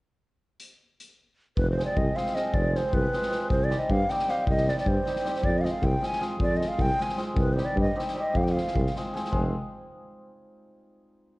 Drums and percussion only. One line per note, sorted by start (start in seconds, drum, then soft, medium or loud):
0.60 closed hi-hat medium
1.00 closed hi-hat medium
1.57 kick loud
1.79 snare soft
1.97 kick medium
2.17 snare soft
2.26 snare soft
2.36 snare soft
2.54 kick medium
2.75 snare soft
2.93 kick medium
3.13 snare soft
3.22 snare soft
3.32 snare soft
3.50 kick loud
3.70 snare soft
3.90 kick medium
4.09 snare soft
4.19 snare soft
4.28 snare soft
4.47 kick medium
4.57 snare soft
4.68 snare soft
4.78 snare soft
4.86 kick medium
5.06 snare soft
5.16 snare soft
5.25 snare soft
5.35 snare soft
5.43 kick medium
5.65 snare soft
5.83 kick medium
6.03 snare soft
6.12 snare soft
6.21 snare soft
6.40 kick medium
6.61 snare soft
6.79 kick medium
7.01 snare soft
7.09 snare soft
7.18 snare soft
7.37 kick loud
7.58 snare soft
7.77 kick medium
7.99 snare soft
8.08 snare soft
8.35 kick medium
8.46 snare soft
8.57 snare soft
8.67 snare soft
8.75 kick medium
8.86 snare soft
8.96 snare soft
9.15 snare soft
9.25 snare soft
9.33 kick medium